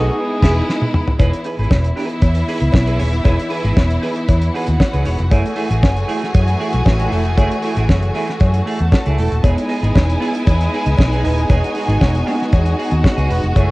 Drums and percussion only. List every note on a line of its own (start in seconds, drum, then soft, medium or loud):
0.43 kick loud
0.43 snare loud
0.43 crash medium
0.69 snare medium
0.82 high tom medium
0.94 mid tom loud
1.08 floor tom medium
1.19 kick loud
1.19 closed hi-hat medium
1.19 cowbell medium
1.33 closed hi-hat medium
1.44 open hi-hat medium
1.59 closed hi-hat medium
1.71 kick loud
1.71 snare loud
1.71 cowbell medium
1.84 closed hi-hat soft
1.97 open hi-hat medium
2.09 closed hi-hat soft
2.22 kick loud
2.22 closed hi-hat medium
2.22 cowbell medium
2.35 closed hi-hat medium
2.48 open hi-hat medium
2.60 closed hi-hat medium
2.72 kick loud
2.72 snare loud
2.72 cowbell medium
2.87 closed hi-hat soft
2.99 open hi-hat medium
3.13 closed hi-hat soft
3.25 kick loud
3.25 closed hi-hat medium
3.25 cowbell medium
3.40 closed hi-hat medium
3.50 open hi-hat medium
3.65 closed hi-hat medium
3.77 kick loud
3.77 snare loud
3.77 cowbell medium
3.90 closed hi-hat soft
4.03 open hi-hat medium
4.16 closed hi-hat soft
4.28 kick loud
4.28 closed hi-hat medium
4.28 cowbell medium
4.42 closed hi-hat medium
4.55 open hi-hat medium
4.67 closed hi-hat medium
4.80 kick loud
4.80 snare loud
4.80 cowbell medium
4.94 closed hi-hat soft
5.05 open hi-hat medium
5.19 closed hi-hat soft
5.31 kick loud
5.31 closed hi-hat medium
5.31 cowbell medium
5.46 closed hi-hat medium
5.56 open hi-hat medium
5.71 closed hi-hat medium
5.83 kick loud
5.83 snare loud
5.83 cowbell medium
5.97 closed hi-hat soft
6.09 open hi-hat medium
6.22 snare soft
6.22 closed hi-hat soft
6.34 kick loud
6.34 closed hi-hat medium
6.34 cowbell medium
6.48 closed hi-hat medium
6.61 open hi-hat medium
6.73 closed hi-hat medium
6.86 kick loud
6.86 snare loud
6.86 cowbell medium
7.00 closed hi-hat soft
7.12 open hi-hat medium
7.25 closed hi-hat soft
7.38 kick loud
7.38 closed hi-hat medium
7.38 cowbell medium
7.52 closed hi-hat medium
7.62 open hi-hat medium
7.77 closed hi-hat medium
7.89 kick loud
7.89 snare loud
7.89 cowbell medium
8.02 closed hi-hat soft
8.15 open hi-hat medium
8.27 snare soft
8.27 closed hi-hat soft
8.40 kick loud
8.40 closed hi-hat medium
8.40 cowbell medium
8.54 closed hi-hat medium
8.67 open hi-hat medium
8.79 closed hi-hat soft
8.92 kick loud
8.92 snare loud
8.92 cowbell medium
9.05 closed hi-hat soft
9.18 open hi-hat medium
9.32 closed hi-hat soft
9.44 kick loud
9.44 closed hi-hat medium
9.44 cowbell medium
9.58 closed hi-hat medium
9.69 open hi-hat medium
9.84 closed hi-hat medium
9.95 kick loud
9.95 snare loud
9.95 cowbell medium
10.09 closed hi-hat soft
10.22 open hi-hat medium
10.34 closed hi-hat soft
10.47 kick loud
10.47 closed hi-hat medium
10.47 cowbell medium
10.61 closed hi-hat medium
10.74 open hi-hat medium
10.86 closed hi-hat soft
10.97 kick loud
10.97 snare loud
10.97 cowbell medium
11.12 closed hi-hat soft
11.25 open hi-hat medium
11.38 closed hi-hat soft
11.49 kick loud
11.49 closed hi-hat medium
11.49 cowbell medium
11.64 closed hi-hat medium
11.75 open hi-hat medium
11.90 closed hi-hat soft
12.01 kick loud
12.01 snare loud
12.01 cowbell medium
12.15 closed hi-hat soft
12.27 open hi-hat medium
12.40 snare soft
12.40 closed hi-hat soft
12.52 kick loud
12.52 closed hi-hat medium
12.52 cowbell medium
12.66 closed hi-hat medium
12.79 open hi-hat medium
12.91 closed hi-hat soft
13.04 kick loud
13.04 snare loud
13.04 cowbell medium
13.18 closed hi-hat soft
13.30 open hi-hat medium
13.44 closed hi-hat soft
13.56 kick loud
13.56 closed hi-hat medium
13.56 cowbell medium